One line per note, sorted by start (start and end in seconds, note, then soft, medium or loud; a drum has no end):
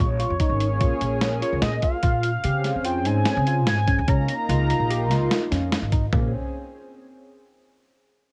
0.00 0.23 A#1 loud
0.00 1.41 C#5 medium
0.20 0.32 F4 medium
0.20 closed hi-hat medium
0.30 0.38 F2 medium
0.40 0.79 A#3 medium
0.40 0.80 C#4 medium
0.40 0.66 D#4 medium
0.40 0.81 G#4 medium
0.40 kick medium
0.40 closed hi-hat medium
0.49 0.82 G#1 medium
0.60 closed hi-hat soft
0.80 0.89 A#2 medium
0.80 1.38 A#3 medium
0.80 1.38 C#4 medium
0.80 0.93 F4 medium
0.80 1.39 G#4 medium
0.80 kick loud
0.80 closed hi-hat medium
1.00 1.40 A#1 medium
1.00 1.27 C#4 medium
1.00 closed hi-hat medium
1.21 snare medium
1.21 closed hi-hat medium
1.42 1.68 F4 medium
1.42 1.61 C#5 medium
1.42 closed hi-hat soft
1.53 1.60 C#2 medium
1.62 1.78 A#2 medium
1.62 1.81 D#5 medium
1.62 snare loud
1.62 closed hi-hat medium
1.82 1.96 F4 medium
1.82 2.87 F5 loud
1.82 kick medium
1.82 closed hi-hat medium
2.03 2.34 A#2 medium
2.03 2.29 F4 medium
2.03 kick medium
2.03 closed hi-hat medium
2.23 closed hi-hat medium
2.44 2.68 C#3 medium
2.44 2.83 C4 medium
2.44 2.84 C#4 medium
2.44 2.70 G4 medium
2.44 2.85 G#4 medium
2.44 closed hi-hat medium
2.64 snare soft
2.64 closed hi-hat medium
2.76 3.07 F2 medium
2.84 3.42 C4 medium
2.84 3.42 C#4 medium
2.84 2.98 F4 medium
2.84 3.43 G#4 medium
2.84 3.08 G5 medium
2.84 closed hi-hat medium
3.05 3.22 G#2 medium
3.05 3.32 D#4 medium
3.05 3.67 G#5 loud
3.05 closed hi-hat medium
3.26 snare loud
3.26 closed hi-hat medium
3.37 3.68 C#3 medium
3.47 3.73 F4 medium
3.47 closed hi-hat medium
3.67 3.91 G#2 medium
3.67 4.11 G#5 loud
3.67 snare loud
3.67 closed hi-hat medium
3.88 4.01 C#4 medium
3.88 kick medium
3.88 closed hi-hat medium
3.99 4.06 D2 medium
4.08 4.24 C#2 loud
4.08 4.65 A#3 medium
4.08 4.34 C#4 medium
4.08 4.66 D#4 medium
4.08 4.66 F4 medium
4.08 5.72 A#5 loud
4.08 kick loud
4.08 closed hi-hat medium
4.29 closed hi-hat medium
4.49 4.73 C#2 loud
4.49 4.75 F4 medium
4.49 closed hi-hat medium
4.68 5.26 A#3 medium
4.68 5.27 D#4 medium
4.68 5.27 F4 medium
4.68 closed hi-hat medium
4.80 5.11 A#1 medium
4.90 5.03 G4 medium
4.90 closed hi-hat medium
5.11 5.26 C#2 loud
5.11 5.37 F4 medium
5.11 snare soft
5.11 closed hi-hat medium
5.31 snare loud
5.31 closed hi-hat medium
5.52 5.75 F2 medium
5.52 5.77 C#4 medium
5.52 snare soft
5.52 closed hi-hat medium
5.72 snare loud
5.72 closed hi-hat medium
5.82 6.06 G#1 medium
5.92 6.05 D#4 medium
5.92 kick medium
5.92 closed hi-hat medium
6.13 6.32 A#1 medium
6.13 6.32 A#3 medium
6.13 6.32 C4 medium
6.13 6.32 C#4 medium
6.13 6.32 G#4 medium
6.13 kick loud
6.13 floor tom loud